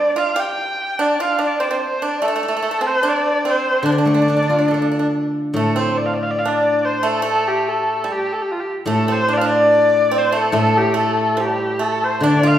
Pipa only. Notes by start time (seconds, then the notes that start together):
Already playing: D4
0.16 F4
0.36 G4
0.99 D4
1.20 F4
1.39 D4
1.60 C4
1.71 C4
2.02 D4
2.22 A3
2.28 A3
2.36 A3
2.43 A3
2.48 A3
2.57 A3
2.63 A3
2.71 A3
2.81 C4
3.03 D4
3.45 C4
3.86 D4
3.92 D4
3.98 D4
4.07 D4
4.14 D4
4.22 D4
4.30 D4
4.37 D4
4.43 D4
4.50 D4
4.58 D4
4.68 D4
4.74 D4
4.82 D4
4.92 D4
4.99 D4
5.56 A3
5.76 C4
6.45 D4
7.03 A3
7.22 A3
8.04 G3
8.87 A3
9.08 C4
9.28 D4
9.41 D4
10.11 C4
10.32 A3
10.53 A3
10.94 A3
11.37 G3
11.79 A3
12.23 D4
12.43 F4